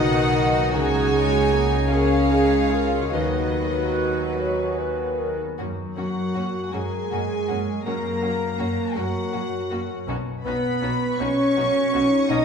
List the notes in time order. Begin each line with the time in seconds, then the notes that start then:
Already playing: B1 B2 C#3 D#3 F#3 A#3 D#4 F#4 A#4 D#5 F#5
0.00 D#5
0.19 A#4
0.37 F#4
0.56 A#3
0.75 C#2 C#3 F#3 D#4 G#4 C#5 G#5
0.93 G#3
1.12 G#3 C#4
1.32 F#4
1.51 A#3 G#4
1.71 C#5
1.90 G#3 C#4 G#4 A#4 C#5 F5
2.11 G#5
2.31 D#4 G#4
2.52 C#5
2.72 F4 G#4 A#4
2.93 C#4
3.12 D#2 D#3 F#3 F#4 B4 D#5
3.34 G#3
3.54 B3
3.75 F#4
3.95 G#4
4.16 D#5
4.38 C#5 F#5
4.58 G#5
4.78 B4 F#5
5.19 G#4 A#4
5.40 B3
5.58 F#2 A#3 C#4 F#4
5.96 F#2 F#3 A#3 C#4 F#4 F#5
6.34 F#2 A#3 C#4 F#4
6.72 F#2 G#3 A#3 C#4 F#4 G#4 A#4 G#5
7.11 F#2 A#3 C#4 F#4
7.47 F#2 A#3 C#4 F#4
7.85 F#2 A#3 C#4 F#4 A#4 A#5
8.21 F#2 A#3 C#4 F#4
8.58 F#2 A#3 C#4 F#4
8.95 F#2 F#3 A#3 C#4 F#4 A#4 F#5
9.32 F#2 A#3 C#4 F#4
9.70 F#2 A#3 C#4 F#4
10.07 B1 B2 B3 C#4 D#4 F#4
10.44 B1 B3 C#4 D#4 F#4 B4 B5
10.82 B1 B3 C#4 D#4 F#4
11.19 B1 B3 C#4 D#4 F#4 B4 C#5 C#6
11.56 B1 B3 C#4 D#4 F#4
11.93 B1 B3 C#4 D#4 F#4
12.29 B1 B2 B3 C#4 D#4 F#4 D#5 D#6